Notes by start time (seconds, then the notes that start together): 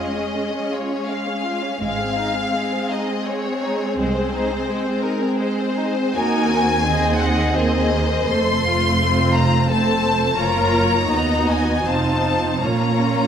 Already playing: F1 F2 G#3 C#4 G#4 D#5
0.00 F4
0.17 C#4
0.36 G#3
0.53 C#4
0.72 F4 C#5
0.91 C#4
1.09 G#3 F5
1.28 C#4
1.45 F4
1.63 C#4
1.81 G#1 G#2 G#3 C4 G#4 F5
1.99 C4
2.18 D#4
2.36 C4
2.54 G#3
2.73 C4
2.90 D#4 D#5
3.09 C4
3.27 G#3 C#5
3.46 C4
3.64 D#4
3.81 C4
3.97 C2 G#3 C5
4.16 C4
4.35 D#4
4.52 C4
4.69 G#3
4.85 C4
5.02 D#4 A#4
5.22 C4
5.38 G#3 C5
5.59 C4
5.78 D#4
5.96 C4
6.15 D#2 A#3 D#4 F#4 A#4 G#5
6.51 C4
6.85 C4 G#4 D#5
7.18 D#5 F#5
7.52 A#3 C4 C5 D#5
7.92 A#3
8.29 F1 F2 A3 A4 C6
8.67 F4
9.00 C4 F4 C5
9.33 A#5
9.70 A3 C4 A4 C5 A5
10.38 F#1 F#2 A#3 F4 A#4 C#5 A#5
11.10 D#2 B3 D#4 F#4 D#5
11.49 G#5
11.85 F1 F2 C4 D#4 F4 C5 A5
12.62 A#1 A#2 A#3 C#4 F4 C#5 A#5